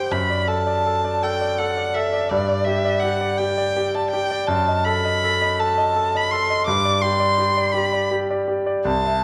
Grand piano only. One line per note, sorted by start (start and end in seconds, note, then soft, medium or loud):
0.00 0.15 G4 soft
0.00 0.14 C5 soft
0.11 2.27 F#2 soft
0.30 0.59 D5 soft
0.48 0.78 A4 soft
0.67 0.96 D5 soft
0.87 1.16 A4 soft
1.04 1.34 D5 soft
1.24 1.53 A4 soft
1.41 1.70 D5 soft
1.59 1.88 A4 soft
1.77 2.06 D5 soft
1.95 2.24 A4 soft
2.13 2.31 D5 soft
2.31 4.44 G2 soft
2.48 2.77 D5 soft
2.67 2.95 G4 soft
2.85 3.13 D5 soft
3.04 3.32 G4 soft
3.21 3.50 D5 soft
3.40 3.69 G4 soft
3.58 3.87 D5 soft
3.77 4.05 G4 soft
3.95 4.23 D5 soft
4.13 4.41 G4 soft
4.31 4.49 D5 soft
4.48 6.63 F#2 soft
4.68 4.97 D#5 soft
4.86 5.15 A4 soft
5.05 5.34 D#5 soft
5.24 5.52 A4 soft
5.41 5.70 D#5 soft
5.59 5.88 A4 soft
5.78 6.07 D#5 soft
5.96 6.25 A4 soft
6.15 6.43 D#5 soft
6.33 6.60 A4 soft
6.50 6.67 D#5 soft
6.68 8.82 G2 soft
6.85 7.12 D5 soft
7.02 7.30 G4 soft
7.20 7.48 D5 soft
7.38 7.67 G4 soft
7.57 7.85 D5 soft
7.74 8.03 G4 soft
7.93 8.22 D5 soft
8.11 8.41 G4 soft
8.30 8.60 D5 soft
8.48 8.78 G4 soft
8.66 8.85 D5 soft
8.85 9.24 C2 soft
9.05 9.24 E5 soft